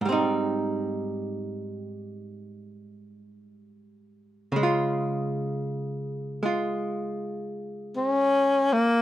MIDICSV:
0, 0, Header, 1, 3, 480
1, 0, Start_track
1, 0, Key_signature, -4, "major"
1, 0, Tempo, 1127820
1, 18, Time_signature, 4, 2, 24, 8
1, 3838, End_track
2, 0, Start_track
2, 0, Title_t, "Tenor saxophone"
2, 0, Program_c, 0, 66
2, 3389, Note_on_c, 0, 61, 72
2, 3715, Note_on_c, 0, 58, 66
2, 3721, Note_off_c, 0, 61, 0
2, 3838, Note_off_c, 0, 58, 0
2, 3838, End_track
3, 0, Start_track
3, 0, Title_t, "Hollow-body jazz guitar"
3, 0, Program_c, 1, 26
3, 6, Note_on_c, 1, 44, 41
3, 24, Note_on_c, 1, 55, 50
3, 38, Note_on_c, 1, 60, 48
3, 52, Note_on_c, 1, 63, 49
3, 1924, Note_on_c, 1, 49, 44
3, 1932, Note_off_c, 1, 44, 0
3, 1940, Note_off_c, 1, 55, 0
3, 1941, Note_on_c, 1, 56, 44
3, 1948, Note_off_c, 1, 60, 0
3, 1955, Note_off_c, 1, 63, 0
3, 1971, Note_on_c, 1, 65, 49
3, 2730, Note_off_c, 1, 56, 0
3, 2735, Note_on_c, 1, 56, 34
3, 2742, Note_off_c, 1, 65, 0
3, 2747, Note_on_c, 1, 65, 38
3, 3838, Note_off_c, 1, 49, 0
3, 3838, Note_off_c, 1, 56, 0
3, 3838, Note_off_c, 1, 65, 0
3, 3838, End_track
0, 0, End_of_file